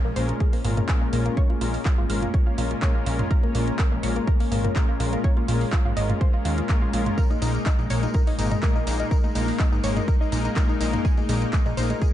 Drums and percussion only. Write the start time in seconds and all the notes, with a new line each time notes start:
0.16 open hi-hat
0.29 closed hi-hat, high conga
0.40 kick, closed hi-hat
0.53 open hi-hat
0.64 open hi-hat
0.77 closed hi-hat, mid tom
0.89 kick, clap, closed hi-hat, high conga
1.13 open hi-hat
1.26 closed hi-hat
1.37 kick, closed hi-hat
1.50 high conga
1.61 open hi-hat
1.74 open hi-hat
1.85 kick, clap, closed hi-hat
2.10 open hi-hat
2.22 closed hi-hat, mid tom, high conga
2.34 kick, closed hi-hat
2.58 open hi-hat
2.71 closed hi-hat
2.82 kick, clap, closed hi-hat, high conga
3.06 open hi-hat
3.19 closed hi-hat, mid tom
3.31 kick, closed hi-hat
3.43 high conga
3.55 open hi-hat
3.68 closed hi-hat
3.79 kick, clap, closed hi-hat
4.03 open hi-hat
4.16 closed hi-hat, high conga
4.27 kick, closed hi-hat
4.40 open hi-hat
4.52 open hi-hat
4.64 closed hi-hat, mid tom
4.76 kick, clap, closed hi-hat, high conga
5.00 open hi-hat
5.13 closed hi-hat
5.24 kick, closed hi-hat
5.37 high conga
5.48 open hi-hat
5.61 open hi-hat
5.72 kick, clap, closed hi-hat
5.97 open hi-hat
6.10 closed hi-hat, mid tom, high conga
6.21 kick, closed hi-hat
6.45 open hi-hat
6.58 closed hi-hat
6.69 kick, clap, closed hi-hat, high conga
6.93 open hi-hat
7.06 closed hi-hat, mid tom
7.18 kick, closed hi-hat, tambourine
7.31 tambourine, high conga
7.42 open hi-hat, tambourine
7.55 closed hi-hat, tambourine
7.65 kick, clap, closed hi-hat, tambourine
7.78 tambourine
7.90 open hi-hat, tambourine
8.03 closed hi-hat, tambourine, high conga
8.14 kick, closed hi-hat, tambourine
8.27 open hi-hat, tambourine
8.39 open hi-hat, tambourine
8.51 closed hi-hat, mid tom, tambourine
8.62 kick, clap, closed hi-hat, tambourine, high conga
8.75 tambourine
8.87 open hi-hat, tambourine
9.00 closed hi-hat, tambourine
9.11 kick, closed hi-hat, tambourine
9.24 tambourine, high conga
9.35 open hi-hat, tambourine
9.48 open hi-hat, tambourine
9.59 kick, clap, closed hi-hat, tambourine
9.72 tambourine
9.84 open hi-hat, tambourine
9.97 closed hi-hat, mid tom, tambourine, high conga
10.08 kick, closed hi-hat, tambourine
10.22 tambourine
10.32 open hi-hat, tambourine
10.45 closed hi-hat, tambourine
10.56 kick, clap, closed hi-hat, tambourine, high conga
10.69 tambourine
10.81 open hi-hat, tambourine
10.93 closed hi-hat, mid tom, tambourine
11.05 kick, closed hi-hat, tambourine
11.17 tambourine, high conga
11.29 open hi-hat, tambourine
11.42 closed hi-hat, tambourine
11.52 kick, clap, closed hi-hat, tambourine
11.66 tambourine
11.77 open hi-hat, tambourine
11.90 closed hi-hat, tambourine, high conga
12.02 kick, closed hi-hat, tambourine